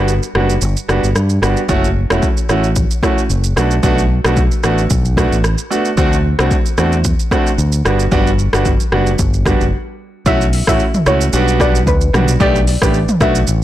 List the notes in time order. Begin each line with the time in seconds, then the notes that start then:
Already playing: G1 G3 B3 D4 F#4
0.08 shaker
0.23 shaker
0.35 F#1 G3 B3 D4 F#4, cross-stick
0.50 shaker
0.62 G1, shaker
0.77 shaker
0.88 F#1 G3 B3 D4 F#4, cross-stick, shaker
1.04 G1, shaker
1.16 G2, cross-stick, shaker
1.29 shaker
1.42 G1 G3 B3 D4 F#4, cross-stick, shaker
1.57 shaker
1.69 F#1 A3 C#4 E4 F#4, kick, shaker
1.84 shaker
2.10 E1 A3 C#4 E4 F#4, cross-stick, shaker
2.22 kick, shaker
2.37 shaker
2.49 A1 A3 C#4 E4 F#4, cross-stick, shaker
2.64 shaker
2.76 kick, shaker
2.91 shaker
3.03 A3 C#4 E4 F#4, kick, cross-stick, shaker
3.18 shaker
3.30 F#1, shaker
3.44 shaker
3.56 B1 A3 B3 D4 F#4, cross-stick, shaker
3.71 shaker
3.83 B1 A3 B3 D4 F#4, kick, shaker
3.98 shaker
4.25 B1 A3 B3 D4 F#4, cross-stick, shaker
4.37 kick, shaker
4.51 shaker
4.63 A1 A3 B3 D4 F#4, cross-stick, shaker
4.78 shaker
4.90 B1, kick, shaker
5.05 shaker
5.17 A3 B3 D4 F#4, kick, cross-stick, shaker
5.32 A1, shaker
5.44 cross-stick, shaker
5.58 shaker
5.70 A3 B3 D4 F#4, shaker
5.85 shaker
5.97 D2 A3 C4 D4 F#4, kick, shaker
6.13 shaker
6.39 C2 A3 C4 D4 F#4, cross-stick, shaker
6.51 kick, shaker
6.66 shaker
6.78 E2 A3 C4 D4 F#4, cross-stick, shaker
6.92 shaker
7.04 kick, shaker
7.19 shaker
7.31 A3 C4 D4 F#4, kick, cross-stick, shaker
7.47 shaker
7.58 D2, shaker
7.72 shaker
7.85 G1 G3 B3 D4 F#4, cross-stick, shaker
7.99 shaker
8.11 G1 G3 B3 D4 F#4, kick, shaker
8.27 shaker
8.39 shaker
8.53 G1 G3 B3 D4 F#4, cross-stick, shaker
8.65 kick, shaker
8.80 shaker
8.92 F#1 G3 B3 D4 F#4, cross-stick
9.07 shaker
9.19 G1, kick, shaker
9.34 shaker
9.45 G3 B3 D4 F#4, kick, cross-stick, shaker
9.61 F#1, shaker
10.26 B1 A3 C#4 E4 F#4 E5, kick, shaker
10.41 shaker
10.53 open hi-hat, shaker
10.67 A1 A3 C#4 E4 F#4 E5, kick, cross-stick, shaker
10.80 shaker
10.94 mid tom, shaker
11.06 C#2 A3 C#4 E4 F#4 C#5, cross-stick, shaker
11.21 shaker
11.33 B1 G3 B3 D4 F#4, shaker
11.48 shaker
11.60 G3 B3 D4 F#4 D5, kick, cross-stick, shaker
11.75 shaker
11.87 D2 B4, kick, shaker
12.01 shaker
12.13 B1 G3 B3 D4 F#4, cross-stick, mid tom, shaker
12.28 shaker
12.40 B1 A3 B3 D4 G4 D5, kick, shaker
12.56 shaker
12.67 open hi-hat, shaker
12.82 A1 A3 B3 D4 G4 B4, kick, cross-stick, shaker
12.94 shaker
13.09 mid tom, shaker
13.20 B1 A3 B3 D4 F#4 E5, kick, cross-stick, shaker
13.35 shaker
13.47 A1, shaker